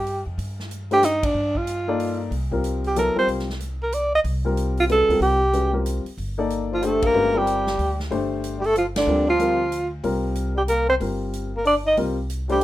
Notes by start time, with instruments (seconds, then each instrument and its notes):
Already playing: upright bass G2, alto saxophone G4
0.07 open hi-hat
0.26 upright bass F2
0.38 upright bass G2, open hi-hat
0.60 snare
0.71 closed hi-hat
0.91 grand piano A3 D4 G4 C5, alto saxophone G4, open hi-hat
1.03 alto saxophone D#4, snare, closed hi-hat
1.23 alto saxophone D4, kick, ride
1.34 upright bass G2
1.55 alto saxophone F4, kick
1.67 closed hi-hat
1.88 grand piano A#3 D#4 A4 D5
2.00 open hi-hat
2.31 upright bass C2, open hi-hat
2.51 grand piano G3 C4 F4 A#4, kick
2.64 closed hi-hat
2.84 alto saxophone G4, open hi-hat
2.96 grand piano F#3 B3 E4 A4, alto saxophone A#4, closed hi-hat
3.16 grand piano G3 C4 F4 A#4, alto saxophone C5, muted upright bass stroke
3.27 upright bass C2, open hi-hat
3.39 snare
3.50 snare
3.60 closed hi-hat
3.83 alto saxophone A#4
3.92 alto saxophone D5, closed hi-hat
4.15 alto saxophone D#5
4.24 upright bass C2, open hi-hat
4.45 grand piano G3 C4 F4 A#4
4.57 closed hi-hat
4.77 alto saxophone F4, open hi-hat
4.89 grand piano G#3 C#4 F#4 B4, alto saxophone A4, closed hi-hat
5.08 upright bass C#2, grand piano G3 C4 F4 A#4, open hi-hat
5.20 upright bass C2, alto saxophone G4, open hi-hat
5.53 grand piano G#3 C#4 F#4 B4, closed hi-hat
5.73 grand piano G3 C4 F4 A#4
5.86 closed hi-hat
6.05 muted upright bass stroke, open hi-hat
6.18 upright bass G1, open hi-hat
6.38 grand piano A#3 D#4 A4 D5
6.50 closed hi-hat
6.72 trombone F3, alto saxophone F4
6.82 grand piano A3 D4 G4 C5, trombone A3, alto saxophone A4, closed hi-hat
7.02 trombone A#3, alto saxophone A#4, kick, ride
7.14 upright bass G1, grand piano G#3 C#4 F#4 B4
7.35 grand piano G3 C4 F4 A#4, trombone G3, alto saxophone G4
7.47 closed hi-hat
7.67 snare
7.78 upright bass D2, open hi-hat
8.00 snare
8.10 upright bass G1, grand piano A3 D4 G4 C5, open hi-hat
8.44 closed hi-hat
8.58 trombone G3, alto saxophone G4
8.64 trombone A3, alto saxophone A4, open hi-hat
8.76 trombone F3, alto saxophone F4, closed hi-hat
8.96 trombone D3, alto saxophone D4, snare, ride
9.07 upright bass D2, grand piano G3 C4 F4 A#4
9.28 trombone F3, alto saxophone F4
9.39 grand piano G3 C4 F4 A#4, closed hi-hat
9.72 closed hi-hat
10.03 upright bass C2, grand piano G3 C4 F4 A#4, open hi-hat
10.35 closed hi-hat
10.56 trombone G3, alto saxophone G4
10.68 trombone A#3, alto saxophone A#4, closed hi-hat
10.89 trombone C4, alto saxophone C5
11.00 upright bass G1, grand piano G3 C4 F4 A#4, open hi-hat
11.33 closed hi-hat
11.56 trombone A#3, alto saxophone A#4
11.65 trombone D4, alto saxophone D5, open hi-hat
11.85 trombone D#4, alto saxophone D#5
11.97 upright bass C2, grand piano G3 C4 F4 A#4, open hi-hat
12.30 closed hi-hat
12.49 trombone G3, grand piano A3 D4 G4 C5, alto saxophone G4, open hi-hat